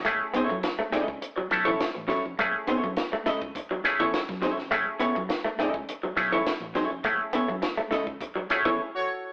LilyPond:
<<
  \new Staff \with { instrumentName = "Horn section" } { \time 4/4 \key fis \dorian \tempo 4 = 103 r1 | r1 | r1 | r2 r8 <fis' a' cis''>16 r8 <fis' a' cis''>8. | }
  \new Staff \with { instrumentName = "Hollow-body jazz guitar" } { \time 4/4 \key fis \dorian r8 <cis' e' a' cis''>16 r8. <cis' e' a' dis''>16 r4 <cis' e' a' cis''>16 r8 <cis' e' a' cis''>16 r16 | r8 <cis' e' a' cis''>16 r8. <cis' e' a' dis''>16 r4 <cis' e' a' cis''>16 r8 <cis' e' a' cis''>16 r16 | r8 <cis' e' a' cis''>16 r8. <cis' e' a' dis''>16 r4 <cis' e' a' cis''>16 r8 <cis' e' a' cis''>16 r16 | r8 <cis' e' a' cis''>16 r8. <cis' e' a' dis''>16 r4 <cis' e' a' cis''>16 r4 | }
  \new Staff \with { instrumentName = "Clav" } { \time 4/4 \key fis \dorian <a cis' e' gis'>4 r4. <a cis' e' a'>8 r4 | <a cis' e' gis'>4 r4. <a cis' e' gis'>8 r4 | <a cis' e' gis'>4 r4. <a cis' e' gis'>8 r4 | <a cis' e' gis'>4 r4. <a cis' e' gis'>8 r4 | }
  \new Staff \with { instrumentName = "Clean electric guitar" } { \time 4/4 \key fis \dorian a16 r16 b16 r8 a16 a16 r8 fis16 r16 e16 r8 fis16 r16 | a16 r16 b16 r8 a16 a16 r8 fis16 r16 e16 r8 fis16 r16 | a16 r16 b16 r8 a16 a16 r8 fis16 r16 e16 r8 fis16 r16 | a16 r16 b16 r8 a16 a16 r8 fis16 r16 e16 r4 | }
  \new Staff \with { instrumentName = "Fingered electric bass" } { \clef bass \time 4/4 \key fis \dorian fis,,16 r8 fis,16 r8 cis,8 r8 b,,8 r16 a,,16 r16 eis,,16 | fis,,16 r8 fis,16 r8 cis,8 r8. e,16 r16 fis,16 r16 eis,,16 | fis,,16 r8 fis,16 r8 cis,8 r8 b,,8 r16 a,,16 r16 eis,,16 | fis,,16 r8 fis,16 r8 cis,8 r8. e,16 r4 | }
  \new DrumStaff \with { instrumentName = "Drums" } \drummode { \time 4/4 <hh bd>8 hh16 bd16 <hh sn>8 <hh sn>16 bd16 hh8 <hh bd sn>8 <hh sn>8 <hh bd sn>8 | <hh bd>8 hh16 bd16 <hh sn>8 <hh sn>16 bd16 <hh bd>8 <hh sn>16 bd16 <hh sn>16 <bd sn>16 <hh sn>16 sn16 | <hh bd>8 hh16 bd16 <hh sn>8 <hh sn>16 bd16 hh8 <hh bd sn>8 <hh sn>8 <hh bd sn>8 | <hh bd>8 hh16 bd16 <hh sn>8 <hh sn>16 bd16 <hh bd>8 <hh sn>16 bd16 r4 | }
>>